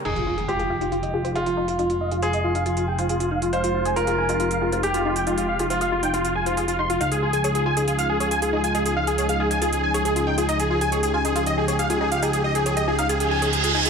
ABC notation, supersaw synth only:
X:1
M:4/4
L:1/16
Q:1/4=138
K:Fm
V:1 name="Supersaw synth"
e F F g F F g F F e F F f F F f | F F e F F e F f F F g F F F f F | f F F a F F a F F f F F g F F g | F F f F F f F g F F a F F F c' F |
f A A a A A a A A f A A a A A a | A A f A A f A a A A a A A A g A | e A A a A A a A A e A A f A A f | A A e A A e A f A A a A A A a A |]